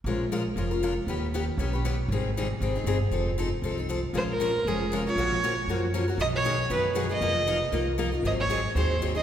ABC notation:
X:1
M:4/4
L:1/8
Q:"Swing" 1/4=234
K:Bbdor
V:1 name="Violin"
z8 | z8 | z8 | z8 |
[K:Bbm] c B3 A2 z d- | d4- d z3 | ^d ^c3 =B2 z d- | ^d4- d z3 |
e d3 c2 z e |]
V:2 name="Steel-string acoustic guitar"
[F,A,DFB] z [F,A,DFB] z [F,A,DFB] [DFB] [F,A,DFB] z | [E,=B,DG=B] z [E,B,DGB] z [E,B,DGB] [DGB] [E,B,DGB] z | [E,G,CEA] z [E,G,CEA] z [E,G,CEA] [CEA] [E,G,CEA] z | [F,CE=A] z [F,CEA] z [F,CEA] [CEA] [F,CEA] z |
[K:Bbm] [F,A,DFB] z [F,A,DFB] z [F,A,DFB] z [F,A,DFB] [DFB] | [F,B,DGB] z [F,B,DGB] z [F,B,DGB] z [F,B,DGB] [DGB] | [=B,,^D,^F,=B,^D^G] z [B,,D,F,B,DG] z [B,,D,F,B,DG] z [B,,D,F,B,DG] [F,B,DG] | [F,B,EFB] z [F,B,EFB] z [F,B,EFB] z [F,B,EFB] [EFB] |
[E,G,CEA] z [E,G,CEA] z [E,G,CEA] z [E,G,CEA] [CEA] |]
V:3 name="Upright bass" clef=bass
B,,,4 F,,,4 | E,,4 =B,,,4 | A,,,4 A,,,2 G,,,2 | F,,,4 C,,4 |
[K:Bbm] B,,,4 F,,,4 | B,,,4 G,,4 | =B,,,4 ^F,,4 | F,,,4 C,,4 |
A,,,4 E,,4 |]